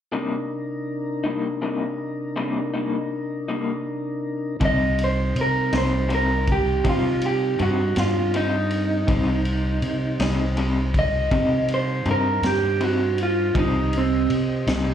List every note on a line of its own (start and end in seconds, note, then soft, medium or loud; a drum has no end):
0.11 4.57 C3 medium
0.11 0.35 C3 medium
0.11 0.35 G3 medium
0.11 0.35 A#3 medium
0.11 4.56 D4 medium
0.11 4.56 D#4 medium
0.11 0.35 D#4 medium
0.11 4.57 A#4 soft
1.24 1.48 G3 soft
1.24 1.47 A#3 soft
1.24 1.47 D#4 soft
1.62 1.84 C3 medium
1.62 1.85 G3 soft
1.62 1.85 A#3 soft
1.62 1.86 D#4 medium
2.36 2.59 C3 medium
2.36 2.59 G3 medium
2.36 2.60 A#3 medium
2.36 2.60 D#4 medium
2.74 2.97 G3 soft
2.74 2.97 A#3 soft
2.74 2.96 D#4 soft
3.48 3.72 G3 soft
3.48 3.72 A#3 soft
3.48 3.71 D#4 soft
4.59 5.31 C2 medium
4.59 4.83 C3 medium
4.59 9.04 G3 medium
4.59 4.84 G3 medium
4.59 9.03 C4 medium
4.59 4.84 C4 medium
4.59 9.03 D#4 medium
4.59 4.84 D#4 medium
4.59 kick loud
4.59 ride medium
4.65 4.99 D#5 medium
4.99 ride medium
5.04 5.37 C5 medium
5.35 5.70 C3 medium
5.35 ride medium
5.41 5.75 A#4 medium
5.73 6.81 C2 medium
5.73 5.97 G3 soft
5.73 5.96 C4 soft
5.73 5.95 D#4 soft
5.73 snare loud
5.73 ride medium
5.78 6.12 C5 medium
6.09 6.32 C3 soft
6.09 6.32 G3 soft
6.09 6.33 C4 medium
6.09 6.33 D#4 medium
6.09 ride medium
6.15 6.49 A#4 medium
6.47 kick medium
6.47 ride medium
6.52 6.86 G4 medium
6.84 7.07 C3 medium
6.84 7.55 C3 medium
6.84 7.07 G3 medium
6.84 7.07 C4 medium
6.84 7.08 D#4 medium
6.84 kick loud
6.84 ride medium
6.89 7.23 F4 medium
7.22 ride medium
7.26 7.60 G4 medium
7.59 7.94 G2 medium
7.59 7.81 C3 medium
7.59 7.82 G3 medium
7.59 7.82 C4 medium
7.59 7.83 D#4 medium
7.59 7.97 F#4 medium
7.59 ride soft
7.96 9.04 G2 medium
7.96 8.34 F4 medium
7.96 snare loud
7.96 ride medium
8.34 8.56 C3 soft
8.34 8.57 G3 medium
8.34 8.57 C4 medium
8.34 8.57 D#4 medium
8.34 10.54 D#4 medium
8.34 ride medium
8.71 ride medium
9.06 9.79 C2 medium
9.06 9.30 C3 medium
9.06 13.50 G3 medium
9.06 9.31 G3 medium
9.06 9.31 C4 medium
9.06 13.50 D#4 medium
9.06 9.31 D#4 medium
9.06 13.50 C5 medium
9.06 kick loud
9.06 ride medium
9.45 ride soft
9.82 10.17 C3 medium
9.82 ride soft
10.19 11.27 C2 medium
10.19 10.44 G3 soft
10.19 10.43 C4 soft
10.19 10.42 D#4 medium
10.19 snare loud
10.19 ride medium
10.57 10.79 C3 medium
10.57 10.80 G3 medium
10.57 10.80 C4 medium
10.57 10.81 D#4 medium
10.57 ride medium
10.94 kick medium
10.94 ride medium
10.99 11.69 D#5 medium
11.31 12.02 C3 medium
11.31 11.54 C3 medium
11.31 11.54 G3 medium
11.31 11.55 C4 medium
11.31 11.55 D#4 medium
11.31 kick loud
11.31 ride medium
11.68 ride medium
11.74 12.08 C5 medium
12.05 12.40 G2 medium
12.05 12.28 C3 medium
12.05 12.29 G3 medium
12.05 12.29 C4 medium
12.05 12.29 D#4 medium
12.05 ride soft
12.11 12.45 A#4 medium
12.42 13.51 G2 medium
12.42 snare medium
12.42 ride medium
12.46 12.81 G4 medium
12.81 13.03 C3 soft
12.81 13.03 G3 medium
12.81 13.04 C4 medium
12.81 13.04 D#4 medium
12.81 13.18 F#4 medium
12.81 ride medium
13.18 ride medium
13.23 13.56 F4 medium
13.53 14.25 C2 medium
13.53 13.78 C3 medium
13.53 13.78 G3 medium
13.53 14.94 G4 medium
13.53 14.94 C5 medium
13.53 14.94 D#5 medium
13.53 kick loud
13.53 ride medium
13.57 13.79 C4 medium
13.57 13.79 D#4 medium
13.57 13.93 D#4 medium
13.93 ride medium
13.98 14.31 C4 medium
14.30 14.64 C3 medium
14.30 ride medium
14.67 14.94 C2 medium
14.67 14.91 G3 soft
14.67 14.90 C4 soft
14.67 14.90 D#4 medium
14.67 snare loud
14.67 ride medium